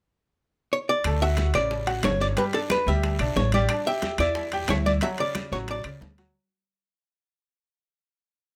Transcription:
0.73 C#5
0.89 D5
1.04 D2 A3 A4, high bongo, high conga, high timbale, long guiro, claves
1.21 F#4 E5 F#5, high bongo, high conga
1.37 high bongo, high conga, high timbale, low timbale, short guiro
1.54 A1 C#3 D5, high bongo, high conga, high timbale, short guiro, claves
1.71 high bongo, high conga, long guiro
1.87 F#4 F#5, high bongo, high conga, high timbale
2.03 G1 C#4 C#5, high bongo, low bongo, high conga, high timbale, low timbale, short guiro, claves
2.20 D5, short guiro
2.36 G3 G4 B4, high bongo, high conga, high timbale, long guiro
2.53 D4 A4 D5, high bongo, high conga, high timbale
2.70 B4, high bongo, high conga, high timbale, low timbale, short guiro, claves
2.87 D2 G3 G4 E5, high bongo, short guiro
3.03 high bongo, high conga, high timbale, long guiro
3.19 B1 D4 D5, high bongo, high conga, high timbale, claves
3.36 A1 C#5, high bongo, low bongo, high conga, low timbale, short guiro
3.52 G3 G4 D5, high conga, high timbale, short guiro
3.69 D4 D5, high bongo, high conga, high timbale, long guiro, claves
3.86 G4 E5 G5, high bongo, high conga
4.02 high bongo, high conga, high timbale, low timbale, short guiro
4.18 E2 E4 D5 E5, high bongo, high conga, high timbale, short guiro, claves
4.35 high bongo, high conga, long guiro
4.52 G4 G5, high bongo, high conga, high timbale
4.68 D2 E4 C#5 E5, high bongo, low bongo, high conga, high timbale, low timbale, short guiro, claves
4.86 D5, high conga, short guiro
5.01 F#3 F#4 E5, high bongo, high conga, high timbale, long guiro
5.18 C#3 D5, high bongo, high conga, high timbale
5.35 high bongo, high conga, high timbale, low timbale, short guiro, claves
5.52 A1 F#3 F#4 C#5, high bongo, short guiro
5.68 D5, high bongo, high conga, high timbale, long guiro
5.84 C#2 C#3 D5, high bongo, high conga, high timbale, claves
6.01 D2, high bongo, low bongo, high conga, low timbale, short guiro
6.18 F#3 F#4, high conga, high timbale, short guiro

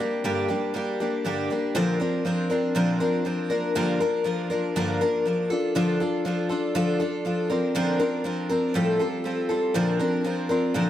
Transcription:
0.00 G3 A#3 D4 G4
0.24 G2 D3 G3 A#3 D4 G4
0.48 G3 A#3 D4 G4
0.74 G3 A#3 D4 G4
1.00 G3 A#3 D4 G4
1.25 G2 D3 G3 A#3 D4 G4
1.50 G3 A#3 D4 G4
1.75 A#2 D3 F3 C4 D4 A#4
2.00 F3 C4 D4 A#4
2.25 F3 C4 D4 A#4
2.50 F3 C4 D4 A#4
2.75 A#2 D3 F3 C4 D4 A#4
3.00 F3 C4 D4 A#4
3.25 F3 C4 D4 A#4
3.50 F3 A#3 D4 A#4
3.75 G2 D3 F3 A#3 D4 A#4
4.00 F3 A#3 D4 A#4
4.24 F3 A#3 D4 A#4
4.50 F3 A#3 D4 A#4
4.76 G2 D3 F3 A#3 D4 A#4
5.01 F3 A#3 D4 A#4
5.25 F3 A#3 D4 A#4
5.50 D4 F4 A4
5.75 D3 F3 D4 F4 A4
6.00 D4 F4 A4
6.25 F3 D4 F4 A4
6.49 D4 F4 A4
6.75 D3 F3 D4 F4 A4
7.00 D4 F4 A4
7.25 F3 D4 F4 A4
7.50 F3 C4 D4 A#4
7.75 A#2 D3 F3 C4 D4 A#4
8.00 F3 C4 D4 A#4
8.24 F3 C4 D4 A#4
8.50 F3 C4 D4 A#4
8.74 A2 F3 G3 C4 F4 A4
8.99 G3 C4 F4 A4
9.24 G3 C4 F4 A4
9.49 G3 C4 F4 A4
9.74 A#2 D3 F3 C4 D4 A#4
9.99 F3 C4 D4 A#4
10.24 F3 C4 D4 A#4
10.49 F3 C4 D4 A#4
10.74 A#2 D3 F3 C4 D4 A#4

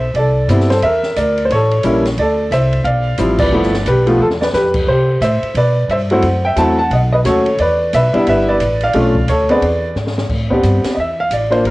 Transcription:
Already playing: B1 C5 E5
0.14 C2 D5, ride
0.18 A4
0.48 G2 G3 B3 C4 E4, hi-hat pedal, ride
0.60 snare
0.70 A4 C5, snare, ride
0.82 E2 A#4 E5, ride
1.03 snare
1.16 D2 A#4 D5, hi-hat pedal, ride
1.37 ride
1.45 C5
1.50 A1 A4 C#5, ride
1.71 ride
1.83 A#1 G3 A#3 C#4 E4, hi-hat pedal, ride
2.05 snare, ride
2.17 D2 A4 D5, ride
2.51 C2 C5 E5, hi-hat pedal, ride
2.73 ride
2.84 B1 D5 F5, ride
3.18 A1 F3 G3 C4 E4, hi-hat pedal, ride
3.39 B4 D5, kick, crash
3.52 G1 F3 A3 B3 E4
3.63 snare
3.74 snare
3.86 B1 G4 B4, hi-hat pedal, ride
4.07 F3 A3 B3 F4, ride
4.19 E2 A4
4.24 F4
4.30 snare
4.41 B4 D5, snare
4.53 F2 G4 B4, snare, hi-hat pedal
4.74 kick, crash
4.87 C3 G4 C5
5.21 A2 C5 E5, hi-hat pedal, ride
5.42 muted upright bass stroke, ride
5.54 B2 B4 D5, ride
5.88 G2 E5, hi-hat pedal, ride
5.93 C5
6.10 F#3 A3 C4 E4 C5 F#5, ride
6.22 F#2, ride
6.45 E5 G5
6.56 E2 F#3 A3 C4 E4 F#5 A5, hi-hat pedal, ride
6.79 F#5 A5
6.90 B1 D#5 F#5, ride
7.12 B4 D#5
7.25 D#2 F#3 A3 C#4 F#4 A4 C#5, hi-hat pedal, ride
7.46 ride
7.58 E2 B4 D5, ride
7.93 B1 B4 E5, hi-hat pedal, ride
8.13 G3 B3 D4 E4, muted upright bass stroke, ride
8.27 G1 B4 E5, ride
8.49 B4 D5
8.60 A1, hi-hat pedal, ride
8.81 D5 F5, ride
8.93 B1 A3 C#4 D4 F4, ride
9.15 kick
9.28 D2 A4 C#5, hi-hat pedal, ride
9.49 B3 C4 D4 G#4 B4 D5, ride
9.62 E2, ride
9.96 G#2, snare, hi-hat pedal
10.07 snare
10.18 snare
10.29 A2, kick, crash
10.50 B3 C4 D4 G4, kick
10.63 G2, hi-hat pedal, ride
10.84 muted upright bass stroke, snare, ride
10.95 E2 D#5
11.00 E5
11.20 F5
11.30 A1 D5, hi-hat pedal, ride
11.50 A#3 D4 F4 C5, ride
11.64 G1 A#4, ride

